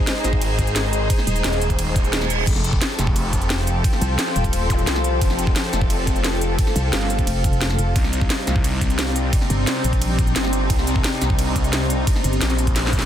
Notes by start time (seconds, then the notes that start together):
Already playing: G#3 D#4 G#4 C5 D#5 A#5
0.07 snare, closed hi-hat, ride
0.24 G#1, snare, closed hi-hat
0.33 kick
0.42 closed hi-hat, ride
0.59 kick, closed hi-hat
0.67 closed hi-hat
0.76 snare, closed hi-hat, ride
0.93 closed hi-hat
1.10 kick, closed hi-hat, ride
1.19 snare
1.27 D#1, closed hi-hat
1.36 closed hi-hat
1.44 D#1, snare, closed hi-hat, ride
1.53 snare, closed hi-hat
1.61 closed hi-hat
1.70 kick, closed hi-hat
1.79 closed hi-hat, ride, reverse cymbal
1.96 kick, closed hi-hat
2.04 closed hi-hat
2.13 snare, closed hi-hat, ride
2.21 snare
2.30 closed hi-hat
2.47 F1 F3 C4 F4 G4 A4, kick, closed hi-hat, crash, ride
2.56 snare
2.63 C5 G5, closed hi-hat
2.73 kick
2.81 snare, closed hi-hat, ride
2.99 F1, snare, closed hi-hat
3.07 kick
3.16 closed hi-hat, ride
3.33 kick, closed hi-hat
3.42 closed hi-hat
3.50 snare, closed hi-hat, ride
3.67 closed hi-hat
3.84 kick, closed hi-hat, ride
3.93 snare
4.01 C2, closed hi-hat
4.19 snare, closed hi-hat, ride
4.27 snare
4.36 D#1, closed hi-hat
4.44 kick, closed hi-hat
4.53 closed hi-hat, ride
4.70 kick, closed hi-hat, zap
4.79 closed hi-hat
4.87 C2, snare, closed hi-hat, ride
4.96 snare
5.04 closed hi-hat
5.21 F1, kick, closed hi-hat, ride
5.30 snare
5.39 closed hi-hat
5.47 kick
5.56 F5, snare, closed hi-hat, ride
5.73 F1, snare, closed hi-hat
5.81 kick
5.90 closed hi-hat, ride
6.07 kick, closed hi-hat
6.16 closed hi-hat
6.24 snare, closed hi-hat, ride
6.41 closed hi-hat
6.59 kick, closed hi-hat, ride
6.67 snare
6.76 C2, closed hi-hat
6.93 G1, snare, closed hi-hat, ride
7.01 snare
7.10 closed hi-hat
7.19 kick, closed hi-hat
7.27 F1, closed hi-hat, ride
7.44 kick, closed hi-hat
7.53 closed hi-hat
7.61 snare, closed hi-hat, ride
7.70 snare
7.79 F1, closed hi-hat
7.96 C2 C3 G3 C4 D4 D#4, kick, closed hi-hat, ride
8.04 snare
8.13 closed hi-hat
8.21 D5, kick
8.27 G4, snare, closed hi-hat, ride
8.47 C2, snare, closed hi-hat
8.56 kick
8.64 closed hi-hat, ride
8.81 kick, closed hi-hat
8.90 closed hi-hat
8.99 snare, closed hi-hat, ride
9.16 closed hi-hat
9.33 kick, closed hi-hat, ride
9.41 snare
9.50 G1, closed hi-hat
9.67 snare, closed hi-hat, ride
9.76 snare
9.84 A#1, closed hi-hat
9.93 kick, closed hi-hat
10.02 closed hi-hat, ride
10.19 kick, closed hi-hat
10.27 closed hi-hat
10.36 G1, snare, closed hi-hat, ride
10.44 snare
10.52 C5, closed hi-hat
10.70 C2, kick, closed hi-hat, ride
10.79 snare
10.87 closed hi-hat
10.96 kick
11.04 snare, closed hi-hat, ride
11.21 C2, snare, closed hi-hat
11.30 kick
11.39 closed hi-hat, ride
11.56 kick, closed hi-hat
11.64 closed hi-hat
11.73 snare, closed hi-hat, ride
11.90 closed hi-hat
12.07 kick, closed hi-hat, ride
12.16 snare
12.24 G1, closed hi-hat
12.33 closed hi-hat
12.41 A#1, snare, closed hi-hat, ride
12.50 snare, closed hi-hat
12.59 closed hi-hat
12.67 kick, closed hi-hat
12.76 snare, closed hi-hat, ride
12.87 snare
12.93 kick, closed hi-hat
12.99 snare, closed hi-hat